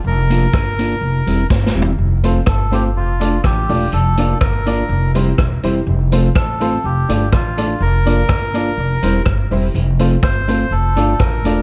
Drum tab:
HH |---x-----x-----x--------|---x-----x-----x-----o--|p--x-----x-----x-----x--|---x-----x-----x-----x--|
SD |------r-----------o-o---|------r-----------r-----|------r-----------r-----|------r-----------r-----|
FT |----------------------o-|------------------------|------------------------|------------------------|
BD |------o-----------o-----|------o-----------o-----|------o-----------o-----|------o-----------o-----|

HH |---x-----x-----x-----o--|p--x-----x-----x-----x--|
SD |------r-----------r-----|------r-----------r-----|
FT |------------------------|------------------------|
BD |------o-----------o-----|------o-----------o-----|